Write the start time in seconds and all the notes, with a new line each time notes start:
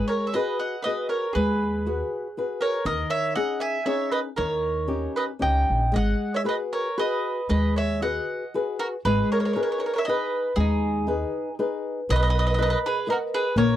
Already playing: G#3
0.08 A#4 C#5
0.27 C#5 E5
0.34 F#4 G#4 B4 D#5
0.59 D#5 F#5
0.82 F#4 G#4 B4 D#5
0.86 B4
1.09 A#4 C#5
1.33 D#2 G#3 G#4 B4
1.86 F#4 G#4 B4
2.37 F#4 G#4 B4
2.61 A#4 C#5
2.85 D#2 D#3 A#4 D#5
3.10 C#5 E5
3.35 C#4 D#4 G#4 D#5 F#5
3.60 E5 G#5
3.85 C#4 D#4 G#4 C#5 E5
4.11 B4 D#5
4.36 D#2 D#3 A#4 C#5
4.88 C#4 D#4 G4
5.16 B4 D#5
5.39 C#2 C#4 D#4 G4 D#5 G5
5.70 A#1
5.92 G#1 G#3 D#5
5.96 F#5
6.34 C#5 E5
6.44 F#4 G#4 B4
6.49 D#5
6.73 A#4 C#5
6.97 F#4 G#4 B4 D#5
7.49 D#2 G#3 B4 D#5
7.76 C#5 E5
8.01 F#4 G#4 B4 D#5 F#5
8.54 F#4 G#4 B4
8.79 F#4 A#4
9.05 G#1 G#3 G#4 B4
9.32 A#4 C#5
9.40 C#5
9.45 A#4 C#5
9.53 D#4 G#4 A#4 B4 C#5
9.62 A#4 C#5
9.70 A#4 C#5
9.78 A#4 C#5
9.86 A#4 C#5
9.93 A#4 C#5
9.98 C#5 E5
10.05 D#4 G#4 B4 D#5
10.09 B4
10.56 D#2 G#3 G#4
10.60 D#4
11.07 D#4 G#4 B4
11.59 D#4 G#4 B4
12.09 B1 B3 B4 D#5
12.16 B4 D#5
12.23 D#5
12.28 B4 D#5
12.35 B4
12.39 B4 D#5
12.47 B4 D#5
12.54 D#5
12.58 A#4 B4 D#5
12.66 B4
12.70 B4 D#5
12.86 G#4 B4
13.07 A#4 B4 D#5
13.12 F#4
13.34 G#4 B4
13.56 A#1 A#3 A#4 C#5